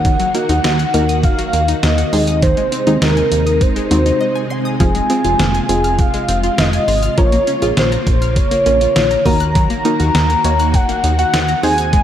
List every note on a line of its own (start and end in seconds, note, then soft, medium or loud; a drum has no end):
0.00 0.17 D#2 loud
0.00 2.10 D#3 medium
0.00 0.23 A#3 medium
0.00 2.09 A#3 medium
0.00 0.23 D#4 medium
0.00 0.23 F#4 medium
0.00 2.10 F#4 medium
0.00 0.23 A#4 medium
0.00 1.20 F#5 loud
0.05 0.18 D#3 medium
0.05 kick loud
0.05 closed hi-hat medium
0.20 0.33 F#3 medium
0.20 closed hi-hat medium
0.35 0.47 A#3 medium
0.35 0.69 A#3 medium
0.35 0.69 D#4 medium
0.35 0.69 F#4 medium
0.35 0.69 A#4 medium
0.35 closed hi-hat medium
0.49 0.60 D#2 loud
0.49 0.62 D#4 loud
0.49 closed hi-hat medium
0.64 0.85 D#2 loud
0.64 0.77 D#5 medium
0.64 snare loud
0.64 closed hi-hat medium
0.79 0.92 F#5 medium
0.79 closed hi-hat medium
0.94 1.25 D#2 loud
0.94 1.63 A#3 medium
0.94 1.63 D#4 medium
0.94 1.63 F#4 medium
0.94 1.63 A#4 loud
0.94 closed hi-hat medium
1.09 1.22 D#6 medium
1.09 closed hi-hat soft
1.23 1.85 F5 loud
1.23 kick loud
1.23 closed hi-hat medium
1.39 1.51 F#3 loud
1.39 closed hi-hat medium
1.53 1.74 D#2 loud
1.53 1.66 A#3 medium
1.53 closed hi-hat medium
1.68 1.81 D#4 medium
1.68 closed hi-hat medium
1.83 2.04 D#2 loud
1.83 1.96 D#5 loud
1.83 2.42 D#5 loud
1.83 snare loud
1.83 closed hi-hat medium
1.98 2.11 F#5 medium
1.98 closed hi-hat medium
2.13 2.54 D#2 loud
2.13 7.14 C3 medium
2.13 2.72 G#3 medium
2.13 7.14 G#3 medium
2.13 2.72 C4 medium
2.13 2.72 D#4 medium
2.13 4.77 D#4 medium
2.13 2.72 G#4 medium
2.13 2.26 C6 medium
2.13 open hi-hat medium
2.27 2.40 D#6 loud
2.27 closed hi-hat medium
2.42 2.55 D#3 medium
2.42 2.98 C5 loud
2.42 kick loud
2.42 closed hi-hat medium
2.57 2.70 G#3 medium
2.57 closed hi-hat medium
2.72 2.85 C4 medium
2.72 closed hi-hat medium
2.87 2.97 D#2 loud
2.87 3.47 G#3 medium
2.87 3.47 C4 medium
2.87 3.00 D#4 loud
2.87 3.47 D#4 medium
2.87 3.47 G#4 medium
2.87 closed hi-hat soft
3.02 3.23 D#2 loud
3.02 3.63 A#4 medium
3.02 3.15 D#5 medium
3.02 snare loud
3.02 closed hi-hat medium
3.17 3.30 G#5 medium
3.17 closed hi-hat medium
3.32 3.63 D#2 loud
3.32 closed hi-hat medium
3.46 3.59 D#6 medium
3.46 closed hi-hat soft
3.61 4.52 C5 loud
3.61 kick loud
3.61 closed hi-hat medium
3.76 3.89 G#3 medium
3.76 closed hi-hat medium
3.91 4.12 D#2 loud
3.91 4.43 G#3 medium
3.91 4.04 C4 medium
3.91 4.43 C4 medium
3.91 4.43 D#4 medium
3.91 4.43 F#4 medium
3.91 closed hi-hat medium
4.06 4.19 D#4 medium
4.06 closed hi-hat medium
4.21 4.33 D#5 loud
4.36 4.48 G#5 medium
4.50 6.01 G#5 loud
4.50 4.63 C6 medium
4.65 4.78 D#6 loud
4.80 5.01 F1 loud
4.80 4.93 F3 medium
4.80 4.97 G#3 medium
4.80 4.97 C4 medium
4.80 9.22 F4 medium
4.80 4.97 F4 medium
4.80 4.97 G#4 medium
4.80 kick loud
4.80 closed hi-hat medium
4.95 5.08 G#3 medium
4.95 closed hi-hat medium
5.10 5.44 G#3 medium
5.10 5.23 C4 medium
5.10 5.44 C4 medium
5.10 5.44 F4 medium
5.10 5.44 G#4 medium
5.10 closed hi-hat medium
5.24 5.35 F1 loud
5.24 5.37 F4 loud
5.24 closed hi-hat soft
5.39 5.60 F1 loud
5.39 5.52 F5 medium
5.39 snare loud
5.39 closed hi-hat medium
5.54 5.67 G#5 medium
5.54 closed hi-hat medium
5.69 6.00 F1 medium
5.69 6.38 G#3 loud
5.69 6.38 C4 medium
5.69 6.38 F4 medium
5.69 6.38 G#4 loud
5.69 closed hi-hat medium
5.84 5.97 F6 medium
5.84 closed hi-hat soft
5.99 6.60 F5 loud
5.99 kick loud
5.99 closed hi-hat medium
6.14 6.27 G#3 loud
6.14 closed hi-hat medium
6.28 6.49 F1 loud
6.28 6.41 C4 medium
6.28 closed hi-hat medium
6.43 6.56 F4 medium
6.43 closed hi-hat medium
6.58 6.79 F1 loud
6.58 7.17 D#5 loud
6.58 6.71 F5 loud
6.58 snare loud
6.58 closed hi-hat medium
6.73 6.86 G#5 medium
6.73 closed hi-hat medium
6.88 7.09 G#1 loud
6.88 7.01 C6 medium
6.88 open hi-hat medium
7.03 7.16 F6 loud
7.03 closed hi-hat medium
7.18 7.39 A#1 loud
7.18 9.24 C#3 medium
7.18 7.31 F3 medium
7.18 9.24 A#3 medium
7.18 7.44 A#3 medium
7.18 7.44 C#4 medium
7.18 7.44 F4 medium
7.18 7.44 A#4 medium
7.18 7.79 C#5 loud
7.18 kick loud
7.18 closed hi-hat medium
7.32 7.45 A#3 medium
7.32 closed hi-hat medium
7.47 7.60 C#4 medium
7.47 closed hi-hat medium
7.62 7.73 A#1 medium
7.62 8.23 A#3 medium
7.62 8.23 C#4 medium
7.62 7.75 F4 loud
7.62 8.23 F4 medium
7.62 8.23 G#4 medium
7.62 closed hi-hat medium
7.77 7.98 A#1 loud
7.77 8.38 C5 loud
7.77 7.90 F5 medium
7.77 snare loud
7.77 closed hi-hat medium
7.92 8.05 A#5 medium
7.92 closed hi-hat medium
8.07 8.38 A#1 loud
8.07 kick loud
8.07 closed hi-hat medium
8.22 8.34 F6 medium
8.22 closed hi-hat soft
8.36 9.25 C#5 loud
8.36 kick loud
8.36 closed hi-hat medium
8.51 8.64 A#3 medium
8.51 closed hi-hat medium
8.66 8.87 A#1 loud
8.66 9.18 A#3 medium
8.66 8.79 C#4 medium
8.66 9.18 C#4 medium
8.66 9.18 F4 medium
8.66 9.18 A#4 medium
8.66 closed hi-hat medium
8.81 8.94 F4 medium
8.81 closed hi-hat medium
8.96 9.17 A#1 loud
8.96 9.09 F5 loud
8.96 snare loud
8.96 closed hi-hat medium
9.11 9.24 A#5 medium
9.11 closed hi-hat medium
9.26 9.67 D#2 loud
9.26 11.61 D#3 medium
9.26 9.73 A#3 medium
9.26 11.61 A#3 medium
9.26 9.73 D#4 medium
9.26 9.73 F#4 medium
9.26 11.61 F#4 medium
9.26 9.73 A#4 medium
9.26 10.76 A#5 loud
9.26 9.38 D#6 medium
9.26 kick medium
9.26 open hi-hat medium
9.40 9.53 F#6 loud
9.40 closed hi-hat medium
9.55 9.68 F#3 medium
9.55 kick loud
9.55 closed hi-hat medium
9.70 9.83 A#3 medium
9.70 closed hi-hat medium
9.85 10.19 A#3 medium
9.85 10.19 D#4 medium
9.85 9.98 D#4 medium
9.85 10.20 F#4 medium
9.85 10.19 A#4 medium
9.85 closed hi-hat medium
10.00 10.10 D#2 loud
10.00 10.13 F#4 loud
10.00 closed hi-hat soft
10.15 10.36 D#2 loud
10.15 10.28 F#5 medium
10.15 snare loud
10.15 closed hi-hat medium
10.30 10.42 A#5 medium
10.30 closed hi-hat medium
10.44 10.76 D#2 loud
10.44 11.13 A#3 medium
10.44 11.13 D#4 medium
10.44 11.13 F#4 medium
10.44 11.13 C#5 loud
10.44 closed hi-hat medium
10.59 10.72 F#6 medium
10.59 closed hi-hat soft
10.74 11.18 F#5 loud
10.74 kick loud
10.74 closed hi-hat medium
10.89 11.02 A#3 medium
10.89 closed hi-hat medium
11.04 11.25 D#2 loud
11.04 11.17 D#4 medium
11.04 closed hi-hat medium
11.19 11.32 F#4 medium
11.19 11.60 F#5 loud
11.19 closed hi-hat medium
11.34 11.54 D#2 loud
11.34 11.46 F#5 loud
11.34 snare loud
11.34 closed hi-hat medium
11.48 11.61 A#5 medium
11.48 closed hi-hat medium
11.63 12.03 D#2 loud
11.63 12.03 C3 medium
11.63 12.03 G#3 medium
11.63 12.03 C4 medium
11.63 12.03 D#4 medium
11.63 12.03 G#4 medium
11.63 12.03 C5 medium
11.63 12.03 G#5 loud
11.63 11.76 D#6 medium
11.63 open hi-hat medium
11.78 11.91 G#6 loud
11.78 closed hi-hat medium
11.93 12.03 G#3 medium
11.93 kick loud
11.93 closed hi-hat medium